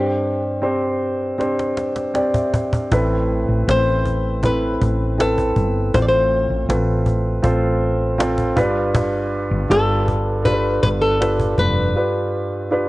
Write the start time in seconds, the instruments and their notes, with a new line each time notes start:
Already playing: grand piano G2 C4 D4 G4 C5, nylon-string guitar G4
0.62 grand piano C4 D4 G4 C5
1.38 grand piano C4 D4 G4 C5, cajon slap
1.59 cajon slap
1.77 cajon slap
1.96 cajon slap
2.14 grand piano C4 D4 G4 D5 G5, cajon slap
2.34 grand piano E5, cajon bass
2.53 grand piano D5, cajon bass
2.73 cajon bass
2.91 fretless electric bass A1, grand piano A2 C4 E4 A4 B4, cajon bass
3.49 fretless electric bass A1
3.68 fretless electric bass A1, grand piano C4 E4 A4 C5, nylon-string guitar C5, cajon slap
4.06 cajon bass
4.43 grand piano C4 E4 A4 B4, nylon-string guitar B4, cajon bass
4.81 fretless electric bass A1, cajon bass
5.18 grand piano C4 E4 A4 B4, nylon-string guitar A4, cajon slap
5.38 cajon bass
5.56 fretless electric bass G1, cajon bass
5.94 fretless electric bass A1, grand piano A2 C4 F4 A4 C5, nylon-string guitar C5, cajon bass
6.02 nylon-string guitar D5
6.08 nylon-string guitar C5
6.50 fretless electric bass A1
6.69 fretless electric bass A1, grand piano C4 F4 A4 B4, cajon slap
7.06 cajon bass
7.43 fretless electric bass A1, grand piano C4 F4 A4 C5, cajon bass
8.18 grand piano C4 F4 A4 C5, cajon slap
8.38 cajon bass
8.56 fretless electric bass G1, grand piano G2 D4 F4 G4 B4, cajon bass
8.95 cajon bass
9.51 fretless electric bass G1
9.69 fretless electric bass G1, grand piano D4 F4 G4 A4, nylon-string guitar A4, cajon slap
10.08 cajon bass
10.44 grand piano D4 F4 G4 A4, nylon-string guitar B4, cajon bass
10.52 grand piano B4
10.83 fretless electric bass G1, nylon-string guitar B4, cajon bass
11.02 nylon-string guitar A4
11.20 grand piano D4 F4 G4 B4, cajon slap
11.40 cajon bass
11.58 fretless electric bass F1, grand piano G2, nylon-string guitar B4, cajon bass
11.96 grand piano D4 F4 G4 B4
12.71 grand piano D4 F4 G4 B4